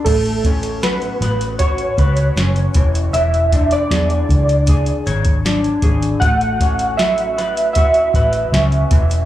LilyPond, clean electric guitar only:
\new Staff \with { instrumentName = "Clean electric guitar" } { \time 4/4 \key a \major \tempo 4 = 78 a8 cis'8 fis'8 b'8 fis'8 b'8 cis'8 e8 | e8 d'8 gis'4 gis'8 cis''8 d'8 gis'8 | a8 cis'8 fis'8 b'8 fis'8 b'8 cis'8 e8 | }